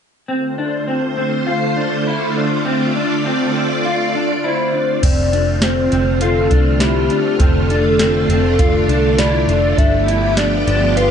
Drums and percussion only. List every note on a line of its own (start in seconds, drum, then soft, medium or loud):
5.03 kick medium
5.03 closed hi-hat medium
5.03 crash medium
5.33 closed hi-hat soft
5.62 snare loud
5.62 closed hi-hat medium
5.92 closed hi-hat soft
6.21 closed hi-hat medium
6.51 kick medium
6.51 closed hi-hat soft
6.80 snare medium
6.80 closed hi-hat medium
7.10 closed hi-hat soft
7.40 kick medium
7.40 closed hi-hat medium
7.70 closed hi-hat soft
7.99 snare medium
7.99 closed hi-hat medium
8.30 closed hi-hat medium
8.59 kick medium
8.59 closed hi-hat medium
8.89 closed hi-hat soft
9.18 snare loud
9.18 closed hi-hat medium
9.49 closed hi-hat soft
9.78 kick medium
9.78 closed hi-hat medium
10.08 closed hi-hat soft
10.37 snare medium
10.37 closed hi-hat medium
10.68 closed hi-hat soft
10.97 closed hi-hat medium